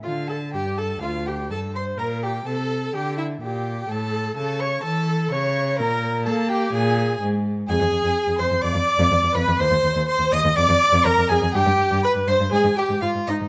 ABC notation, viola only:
X:1
M:4/4
L:1/8
Q:1/4=125
K:Dm
V:1 name="Viola"
F A G A F G A c | B G A2 G E G2 | A2 A ^c A2 c2 | B2 A G ^G2 z2 |
[K:Fdor] A3 c d3 =B | c2 c e d2 B A | G2 =B c A G F E |]